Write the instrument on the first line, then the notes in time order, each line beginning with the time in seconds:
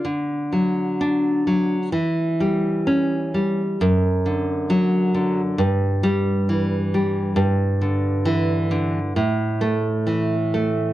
nylon-string guitar
0.05 D3
0.53 F#3
1.01 D4
1.47 F#3
1.92 E3
2.40 G3
2.87 C#4
3.34 G3
3.81 F#2
4.26 D3
4.70 F#3
5.14 D3
5.58 G2
6.03 G3
6.49 E3
6.94 G3
7.36 G2
7.81 D3
8.25 E3
8.71 D3
9.16 A2
9.61 A3
10.07 E3
10.54 A3